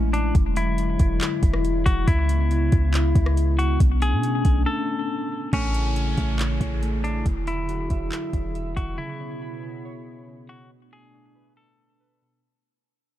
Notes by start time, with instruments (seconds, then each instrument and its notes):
Already playing: 808-style bass A1, analog synth pad G#3 A3 C#4 E4
0.13 clean electric guitar D4, closed hi-hat
0.35 808-style bass E1, analog synth pad D3 F#3, kick, closed hi-hat
0.56 clean electric guitar E4, closed hi-hat
0.78 closed hi-hat
0.99 808-style bass E1, kick, closed hi-hat
1.21 clap, closed hi-hat
1.43 808-style bass E1, kick, closed hi-hat
1.53 cross-stick
1.65 closed hi-hat
1.86 808-style bass E1, clean electric guitar F#4, kick, closed hi-hat
2.07 808-style bass C#2, analog synth pad C#3 B3, clean electric guitar E4, kick, closed hi-hat
2.29 closed hi-hat
2.51 closed hi-hat
2.72 808-style bass C#2, kick, closed hi-hat
2.94 clap, closed hi-hat
3.15 808-style bass C#2, kick, closed hi-hat
3.26 cross-stick
3.37 closed hi-hat
3.59 clean electric guitar F#4, closed hi-hat
3.80 808-style bass B1, analog synth pad A3 C#4 D4, kick, closed hi-hat
4.02 clean electric guitar G#4, closed hi-hat
4.13 808-style bass B2
4.23 closed hi-hat
4.45 808-style bass B1, kick, closed hi-hat
4.66 clean electric guitar A4
5.53 808-style bass A1, analog synth pad C#3 A3 E4 G#4, synth keys A3, clean electric guitar C#4, kick, closed hi-hat, downlifter
5.74 synth keys C#5, closed hi-hat
5.96 synth keys G#5, closed hi-hat
6.17 808-style bass A1, synth keys A3, kick, closed hi-hat
6.39 synth keys C#5, clap, closed hi-hat
6.61 808-style bass A1, kick, closed hi-hat
6.83 synth keys A3, closed hi-hat
7.04 clean electric guitar D4, synth keys C#5, closed hi-hat
7.26 808-style bass E1, analog synth pad D3 F#3, kick, closed hi-hat
7.47 clean electric guitar E4, closed hi-hat
7.69 synth keys F#4, closed hi-hat
7.90 808-style bass E1, synth keys E5, kick, closed hi-hat
8.12 clap, closed hi-hat
8.33 808-style bass E1, kick, closed hi-hat
8.55 synth keys E5, closed hi-hat
8.76 808-style bass E1, synth keys E3, clean electric guitar F#4, kick, closed hi-hat
8.98 analog synth pad B2 B3, synth keys C#3, clean electric guitar E4
9.20 synth keys C#5
9.41 synth keys B5
9.63 synth keys C#3
9.85 synth keys C#5
10.28 synth keys C#3
10.49 clean electric guitar F#4, synth keys C#5
10.71 analog synth pad A3 D4
10.93 clean electric guitar G#4
11.14 synth keys D4
11.35 synth keys B4
11.57 clean electric guitar A4
12.00 synth keys B4
12.22 synth keys B2